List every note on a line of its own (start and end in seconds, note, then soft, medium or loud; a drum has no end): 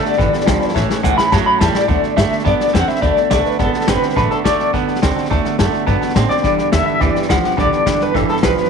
0.00 0.15 D3 medium
0.00 0.15 A3 loud
0.00 0.13 D5 medium
0.00 0.12 F#5 medium
0.00 0.12 A5 medium
0.05 0.20 A3 soft
0.05 0.20 B3 medium
0.05 0.19 F#4 medium
0.05 0.74 D5 loud
0.05 snare soft
0.13 snare soft
0.18 0.32 G1 loud
0.18 0.33 G2 medium
0.18 0.33 D3 medium
0.18 0.34 E3 medium
0.18 0.34 G3 medium
0.18 0.33 B3 medium
0.18 0.32 E4 loud
0.18 0.27 D5 loud
0.18 0.27 G5 loud
0.18 0.27 B5 loud
0.18 kick loud
0.18 snare soft
0.33 0.47 E3 soft
0.33 0.48 G3 soft
0.33 0.48 B3 medium
0.33 0.47 E4 medium
0.33 0.41 D5 medium
0.33 0.41 G5 medium
0.33 0.41 B5 medium
0.33 snare soft
0.40 snare soft
0.45 0.59 B1 medium
0.45 0.72 G2 loud
0.45 0.62 E3 medium
0.45 0.72 F3 loud
0.45 0.61 G3 medium
0.45 0.55 D5 medium
0.45 0.55 G5 medium
0.45 0.55 B5 loud
0.45 kick medium
0.45 snare loud
0.45 hi-hat pedal medium
0.49 0.61 B3 medium
0.49 0.60 E4 medium
0.60 0.74 E3 medium
0.60 0.75 G3 medium
0.60 0.75 B3 medium
0.60 0.75 E4 medium
0.60 0.69 D5 loud
0.60 0.69 G5 medium
0.60 0.69 B5 loud
0.60 muted upright bass stroke medium
0.60 snare soft
0.68 snare soft
0.74 0.88 A1 medium
0.74 0.89 A2 loud
0.74 1.01 E3 medium
0.74 0.89 F#3 loud
0.74 0.90 A3 loud
0.74 0.88 C#4 loud
0.74 0.87 E4 loud
0.74 0.83 C#5 loud
0.74 0.83 E5 loud
0.74 0.83 A5 loud
0.74 kick loud
0.74 snare medium
0.88 1.02 A3 medium
0.88 1.03 C#4 medium
0.88 1.03 E4 medium
0.88 0.98 C#5 loud
0.88 0.98 E5 medium
0.88 0.98 A5 loud
0.88 snare medium
1.02 1.17 C#2 loud
1.02 1.29 A2 loud
1.02 1.29 E3 loud
1.02 1.17 F#3 medium
1.02 1.17 A3 medium
1.02 1.16 C#4 medium
1.02 1.15 E4 medium
1.02 1.12 C#5 medium
1.02 1.12 E5 medium
1.02 1.17 F#5 loud
1.02 1.12 A5 medium
1.02 kick medium
1.02 hi-hat pedal medium
1.16 1.31 A3 soft
1.16 1.31 C#4 soft
1.16 1.31 E4 soft
1.16 1.26 C#5 medium
1.16 1.26 E5 medium
1.16 1.26 B5 medium
1.16 1.32 B5 loud
1.16 muted upright bass stroke medium
1.16 snare medium
1.30 1.45 F#2 loud
1.30 1.45 A2 medium
1.30 1.46 F#3 medium
1.30 1.46 A3 medium
1.30 1.45 C#4 medium
1.30 1.43 E4 medium
1.30 1.41 C#5 loud
1.30 1.41 E5 loud
1.30 1.46 A5 medium
1.30 1.41 A5 loud
1.30 kick loud
1.30 snare medium
1.45 1.59 A3 soft
1.45 1.60 C#4 medium
1.45 1.60 E4 medium
1.45 1.55 C#5 medium
1.45 1.55 E5 medium
1.45 1.55 A5 medium
1.45 1.59 B5 loud
1.59 1.74 E2 loud
1.59 1.86 A2 loud
1.59 1.74 F#3 medium
1.59 1.86 G3 loud
1.59 1.75 A3 medium
1.59 1.73 E4 medium
1.59 1.68 C#5 medium
1.59 1.68 E5 medium
1.59 1.68 A5 medium
1.59 1.73 A5 loud
1.59 kick medium
1.59 snare loud
1.59 hi-hat pedal medium
1.73 1.87 A3 soft
1.73 1.88 C#4 soft
1.73 1.88 E4 medium
1.73 1.83 C#5 medium
1.73 2.17 D5 loud
1.73 1.83 E5 medium
1.73 1.83 A5 medium
1.73 muted upright bass stroke medium
1.73 snare medium
1.87 2.02 D2 medium
1.87 2.02 D3 medium
1.87 2.03 F#3 medium
1.87 2.03 A3 medium
1.87 2.02 B3 medium
1.87 2.00 F#4 medium
1.87 1.97 D5 medium
1.87 1.97 F#5 medium
1.87 1.97 A5 loud
1.87 kick loud
1.87 snare soft
2.02 2.16 A3 soft
2.02 2.16 B3 soft
2.02 2.17 F#4 medium
2.02 2.11 D5 medium
2.02 2.11 F#5 medium
2.02 2.11 A5 medium
2.02 muted upright bass stroke medium
2.02 snare soft
2.16 2.30 G2 medium
2.16 2.42 D3 medium
2.16 2.31 F#3 medium
2.16 2.31 A3 medium
2.16 2.31 B3 medium
2.16 2.29 F#4 medium
2.16 2.26 D5 medium
2.16 2.46 E5 loud
2.16 2.25 F#5 medium
2.16 2.25 A5 medium
2.16 kick medium
2.16 snare loud
2.16 hi-hat pedal medium
2.30 2.45 A3 soft
2.30 2.45 B3 soft
2.30 2.45 F#4 soft
2.30 2.40 D5 medium
2.30 2.40 F#5 medium
2.30 2.40 A5 medium
2.30 muted upright bass stroke medium
2.30 snare soft
2.39 snare soft
2.45 2.58 F#2 medium
2.45 2.60 D3 medium
2.45 2.60 F#3 medium
2.45 2.60 A3 medium
2.45 2.60 B3 medium
2.45 2.58 F#4 medium
2.45 2.54 D5 medium
2.45 2.75 D5 loud
2.45 2.54 F#5 medium
2.45 2.54 A5 loud
2.45 kick loud
2.45 snare soft
2.59 2.73 A3 soft
2.59 2.74 B3 medium
2.59 2.74 F#4 medium
2.59 2.69 D5 medium
2.59 2.69 F#5 medium
2.59 2.68 A5 medium
2.59 snare soft
2.68 snare soft
2.73 2.88 E2 medium
2.73 2.99 D3 medium
2.73 2.88 F#3 medium
2.73 2.88 A3 medium
2.73 3.00 C4 medium
2.73 2.87 F#4 medium
2.73 2.83 D5 medium
2.73 2.83 F#5 medium
2.73 2.88 F#5 medium
2.73 2.83 A5 medium
2.73 kick medium
2.73 snare loud
2.73 hi-hat pedal medium
2.88 3.02 A3 soft
2.88 3.02 B3 soft
2.88 3.02 F#4 medium
2.88 2.97 D5 medium
2.88 3.02 E5 loud
2.88 2.97 F#5 medium
2.88 2.97 B5 medium
2.88 muted upright bass stroke medium
2.88 snare soft
2.95 snare soft
3.02 3.16 D2 medium
3.02 3.17 D3 medium
3.02 3.17 F#3 medium
3.02 3.17 A3 medium
3.02 3.16 B3 medium
3.02 3.15 F#4 medium
3.02 3.11 D5 medium
3.02 3.30 D5 loud
3.02 3.11 F#5 medium
3.02 3.11 B5 loud
3.02 kick loud
3.02 snare soft
3.16 3.30 A3 soft
3.16 3.30 B3 soft
3.16 3.31 F#4 medium
3.16 3.26 D5 medium
3.16 3.26 F#5 medium
3.16 3.26 A5 medium
3.16 muted upright bass stroke medium
3.16 snare soft
3.30 3.45 B1 medium
3.30 3.56 D3 medium
3.30 3.45 F#3 medium
3.30 3.45 A3 medium
3.30 3.46 B3 medium
3.30 3.44 F#4 medium
3.30 3.46 D5 medium
3.30 3.39 F#5 medium
3.30 3.39 A5 medium
3.30 kick medium
3.30 snare loud
3.30 hi-hat pedal medium
3.44 3.59 A3 soft
3.44 3.60 B3 soft
3.44 3.60 F#4 medium
3.44 3.60 B4 medium
3.44 3.53 D5 medium
3.44 3.53 F#5 medium
3.44 3.54 A5 medium
3.44 muted upright bass stroke medium
3.44 snare soft
3.52 snare soft
3.59 3.73 F#1 medium
3.59 3.74 D3 medium
3.59 3.74 F#3 medium
3.59 3.74 A3 medium
3.59 3.73 B3 medium
3.59 3.72 F#4 medium
3.59 3.88 A4 medium
3.59 3.68 D5 loud
3.59 3.68 F#5 medium
3.59 3.68 A5 loud
3.59 kick loud
3.59 snare soft
3.73 3.87 A3 soft
3.73 3.88 F#4 medium
3.73 3.82 D5 medium
3.73 3.82 F#5 medium
3.73 3.82 A5 medium
3.73 snare soft
3.81 snare soft
3.87 4.01 G1 medium
3.87 4.13 D3 medium
3.87 4.02 F#3 medium
3.87 4.02 A3 medium
3.87 4.02 B3 medium
3.87 4.14 C4 loud
3.87 4.00 F#4 medium
3.87 4.16 B4 medium
3.87 3.96 D5 medium
3.87 3.97 F#5 medium
3.87 3.96 A5 medium
3.87 kick medium
3.87 snare loud
3.87 hi-hat pedal medium
4.01 4.16 A3 soft
4.01 4.16 B3 soft
4.01 4.16 F#4 medium
4.01 4.11 D5 medium
4.01 4.11 F#5 medium
4.01 4.11 A5 medium
4.01 snare soft
4.09 snare soft
4.16 4.30 A1 medium
4.16 4.31 D3 medium
4.16 4.31 F#3 medium
4.16 4.31 A3 medium
4.16 4.31 B3 medium
4.16 4.29 F#4 medium
4.16 4.30 B4 medium
4.16 4.25 D5 loud
4.16 4.25 F#5 medium
4.16 4.25 A5 loud
4.16 kick loud
4.16 snare soft
4.30 4.44 A3 soft
4.30 4.45 B3 soft
4.30 4.45 F#4 medium
4.30 4.44 A4 medium
4.30 4.40 D5 medium
4.30 4.40 F#5 medium
4.30 4.40 A5 medium
4.30 muted upright bass stroke medium
4.30 snare soft
4.44 4.58 D2 medium
4.44 4.70 D3 medium
4.44 4.59 F#3 medium
4.44 4.59 A3 medium
4.44 4.59 B3 medium
4.44 4.58 F#4 medium
4.44 4.71 D5 medium
4.44 4.54 A5 medium
4.44 kick medium
4.44 snare loud
4.44 hi-hat pedal medium
4.59 4.73 A3 soft
4.59 4.74 B3 soft
4.59 4.73 F#4 medium
4.59 4.68 D5 medium
4.59 4.68 F#5 medium
4.59 4.69 A5 medium
4.59 snare soft
4.74 4.87 B1 medium
4.74 4.88 D3 medium
4.74 4.88 F#3 medium
4.74 4.88 A3 medium
4.74 4.88 B3 medium
4.74 4.86 F#4 medium
4.74 4.82 D5 loud
4.74 4.82 F#5 medium
4.74 4.82 A5 loud
4.74 kick loud
4.74 snare soft
4.88 5.01 A3 soft
4.88 5.03 B3 medium
4.88 5.02 F#4 medium
4.88 4.96 D5 medium
4.88 4.97 F#5 medium
4.88 4.97 A5 medium
4.88 snare soft
4.95 snare soft
5.01 5.16 C#2 medium
5.01 5.28 D3 medium
5.01 5.16 F#3 medium
5.01 5.16 A3 medium
5.01 5.15 B3 medium
5.01 5.28 C4 loud
5.01 5.14 F#4 medium
5.01 5.11 D5 medium
5.01 5.11 F#5 medium
5.01 5.11 A5 medium
5.01 kick medium
5.01 snare loud
5.01 hi-hat pedal medium
5.15 5.29 A3 soft
5.15 5.30 B3 medium
5.15 5.30 F#4 medium
5.15 5.25 D5 medium
5.15 5.25 F#5 medium
5.15 5.25 A5 loud
5.15 muted upright bass stroke medium
5.15 snare soft
5.25 snare soft
5.30 5.45 D2 medium
5.30 5.44 D3 medium
5.30 5.45 F#3 medium
5.30 5.45 A3 loud
5.30 5.45 B3 medium
5.30 5.43 F#4 loud
5.30 5.40 D5 loud
5.30 5.39 F#5 loud
5.30 5.39 A5 loud
5.30 kick loud
5.30 snare soft
5.44 5.58 A3 soft
5.44 5.58 B3 medium
5.44 5.59 F#4 medium
5.44 5.53 D5 medium
5.44 5.53 F#5 medium
5.44 5.53 A5 medium
5.44 snare soft
5.58 5.73 F#2 medium
5.58 5.84 D3 medium
5.58 5.73 F#3 medium
5.58 5.85 A3 medium
5.58 5.73 B3 medium
5.58 5.72 F#4 medium
5.58 5.68 D5 medium
5.58 5.68 F#5 medium
5.58 5.68 A5 medium
5.58 kick medium
5.58 snare loud
5.58 hi-hat pedal medium
5.73 5.87 A3 soft
5.73 5.87 B3 medium
5.73 5.87 F#4 medium
5.73 5.81 D5 medium
5.73 5.82 F#5 medium
5.73 5.81 A5 medium
5.73 snare soft
5.87 6.01 G2 medium
5.87 6.01 D3 medium
5.87 6.02 F#3 medium
5.87 6.02 A3 medium
5.87 6.02 B3 medium
5.87 6.00 F#4 medium
5.87 5.96 D5 loud
5.87 5.96 F#5 loud
5.87 5.96 A5 loud
5.87 kick loud
5.87 snare soft
6.01 6.15 A3 soft
6.01 6.16 B3 medium
6.01 6.16 F#4 medium
6.01 6.10 D5 medium
6.01 6.10 F#5 medium
6.01 6.10 A5 medium
6.01 muted upright bass stroke medium
6.01 snare soft
6.09 snare soft
6.15 6.29 A2 medium
6.15 6.41 D3 medium
6.15 6.30 F#3 medium
6.15 6.30 A3 medium
6.15 6.31 B3 medium
6.15 6.41 C4 loud
6.15 6.29 F#4 medium
6.15 6.24 D5 medium
6.15 6.24 F#5 medium
6.15 6.24 A5 medium
6.15 kick medium
6.15 snare loud
6.15 hi-hat pedal medium
6.29 6.45 B3 soft
6.29 6.44 F#4 medium
6.29 6.72 D5 medium
6.29 6.38 F#5 medium
6.29 6.38 A5 medium
6.29 muted upright bass stroke medium
6.29 snare soft
6.33 6.46 A3 soft
6.37 snare soft
6.42 6.57 G2 medium
6.42 6.59 G2 medium
6.42 6.59 D3 medium
6.42 6.59 E3 medium
6.42 6.59 G3 medium
6.42 6.52 D5 loud
6.42 6.52 G5 medium
6.42 6.52 B5 medium
6.42 kick loud
6.42 snare soft
6.46 6.59 B3 medium
6.46 6.57 G4 medium
6.58 6.72 E3 soft
6.58 6.73 G3 soft
6.58 6.73 B3 soft
6.58 6.73 G4 medium
6.58 6.67 D5 medium
6.58 6.67 G5 medium
6.58 6.67 B5 medium
6.58 muted upright bass stroke soft
6.58 snare soft
6.71 6.86 D#2 medium
6.71 6.98 G2 medium
6.71 6.98 D3 loud
6.71 6.87 E3 medium
6.71 6.88 G3 medium
6.71 6.87 B3 medium
6.71 6.80 D5 medium
6.71 6.85 E5 loud
6.71 6.80 G5 medium
6.71 kick medium
6.71 snare loud
6.71 hi-hat pedal medium
6.76 6.86 G4 medium
6.85 7.02 G3 soft
6.85 7.02 B3 medium
6.85 7.01 G4 medium
6.85 6.94 D5 medium
6.85 7.01 E5 loud
6.85 6.95 G5 medium
6.85 6.94 B5 medium
6.85 snare soft
6.90 7.01 E3 soft
7.00 7.14 D2 medium
7.00 7.15 G2 medium
7.00 7.16 D3 medium
7.00 7.16 E3 medium
7.00 7.16 G3 medium
7.00 7.15 B3 medium
7.00 7.14 G4 medium
7.00 7.09 D5 loud
7.00 7.30 D5 medium
7.00 7.09 G5 medium
7.00 7.09 B5 loud
7.00 kick loud
7.00 snare soft
7.15 7.28 E3 soft
7.15 7.29 G3 soft
7.15 7.30 B3 medium
7.15 7.29 G4 medium
7.15 7.23 G5 medium
7.15 7.23 B5 medium
7.15 snare soft
7.22 snare soft
7.28 7.42 C#2 medium
7.28 7.55 G2 medium
7.28 7.43 E3 medium
7.28 7.55 F3 medium
7.28 7.44 G3 medium
7.28 7.43 B3 medium
7.28 7.42 G4 medium
7.28 7.37 D5 medium
7.28 7.59 F#5 loud
7.28 7.37 B5 medium
7.28 kick medium
7.28 snare loud
7.28 hi-hat pedal medium
7.43 7.58 E3 soft
7.43 7.58 G3 soft
7.43 7.58 B3 medium
7.43 7.58 G4 medium
7.43 7.52 D5 medium
7.43 7.52 G5 medium
7.43 7.52 D6 medium
7.43 snare soft
7.51 snare soft
7.57 7.71 B1 medium
7.57 7.72 G2 medium
7.57 7.72 D3 medium
7.57 7.72 E3 medium
7.57 7.72 G3 medium
7.57 7.72 B3 medium
7.57 7.71 G4 medium
7.57 7.66 D5 medium
7.57 8.02 D5 loud
7.57 7.66 G5 medium
7.57 7.66 B5 loud
7.57 kick loud
7.57 snare soft
7.72 7.85 E3 soft
7.72 7.86 G3 medium
7.72 7.86 B3 soft
7.72 7.86 G4 medium
7.72 7.81 G5 medium
7.72 7.81 B5 medium
7.72 muted upright bass stroke medium
7.72 snare soft
7.86 7.99 A1 medium
7.86 8.12 G2 medium
7.86 8.12 D3 loud
7.86 8.00 E3 medium
7.86 8.01 G3 medium
7.86 8.01 B3 medium
7.86 8.00 G4 medium
7.86 7.95 D5 medium
7.86 7.95 G5 medium
7.86 7.95 B5 medium
7.86 kick medium
7.86 snare loud
7.86 hi-hat pedal medium
8.01 8.15 E3 soft
8.01 8.15 G3 soft
8.01 8.15 B3 medium
8.01 8.15 G4 medium
8.01 8.15 B4 medium
8.01 8.09 D5 medium
8.01 8.09 G5 medium
8.01 8.09 B5 medium
8.01 snare soft
8.15 8.28 G1 medium
8.15 8.29 G2 medium
8.15 8.29 D3 medium
8.15 8.29 E3 medium
8.15 8.30 G3 medium
8.15 8.30 B3 medium
8.15 8.28 G4 medium
8.15 8.29 A4 medium
8.15 8.23 D5 loud
8.15 8.23 G5 medium
8.15 8.23 B5 loud
8.15 kick loud
8.15 snare soft
8.29 8.42 E3 soft
8.29 8.43 G3 soft
8.29 8.44 B3 medium
8.29 8.43 G4 medium
8.29 8.44 A4 medium
8.29 8.38 D5 medium
8.29 8.37 B5 medium
8.29 snare soft
8.36 snare soft
8.43 8.56 B1 medium
8.43 8.68 G2 medium
8.43 8.57 E3 medium
8.43 8.68 F3 loud
8.43 8.57 G3 medium
8.43 8.57 B3 medium
8.43 8.57 G4 medium
8.43 8.70 B4 medium
8.43 8.52 D5 medium
8.43 8.52 G5 medium
8.43 kick medium
8.43 snare loud
8.43 hi-hat pedal medium
8.56 8.70 G3 soft
8.56 8.70 B3 medium
8.56 8.70 G4 medium
8.56 8.65 D5 medium
8.56 8.65 G5 medium
8.56 8.65 B5 medium
8.56 muted upright bass stroke medium
8.56 snare soft
8.60 8.70 E3 soft
8.64 snare soft